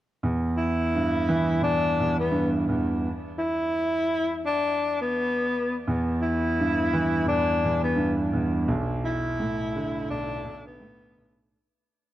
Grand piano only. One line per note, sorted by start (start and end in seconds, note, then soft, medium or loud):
0.23 1.60 E2 medium
0.95 2.30 G2 medium
1.29 3.05 E3 loud
1.61 1.98 E2 medium
2.00 2.67 E2 medium
2.31 3.03 G2 medium
2.69 3.04 E2 medium
5.87 7.24 E2 medium
6.60 7.94 G2 medium
6.93 8.69 E3 loud
7.26 7.63 E2 medium
7.64 8.32 E2 medium
7.96 8.68 G2 medium
8.33 8.69 E2 medium
8.68 10.09 B1 medium
9.40 10.79 A2 medium
9.76 11.52 D3 loud
10.10 10.42 B1 medium
10.44 11.16 B1 medium
10.80 11.51 A2 loud
11.18 11.52 B1 medium